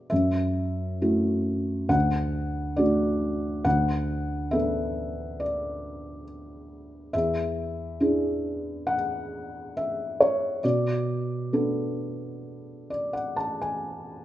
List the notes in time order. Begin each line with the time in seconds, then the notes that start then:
Already playing: D5
0.10 F#2 E5
1.02 A3 E4 F#4
1.89 D2 F#5
2.77 A3 D4 F#4 D5
3.65 D2 F#5
4.51 B3 D4 A4 E5
5.40 D5
7.13 E2 E5
8.00 D4 E4 G#4
8.87 F#5
9.77 E5
10.20 C#5
10.64 B2 D5
11.53 B3 D4 A4
12.90 D5
13.13 F#5
13.36 A5
13.62 G#5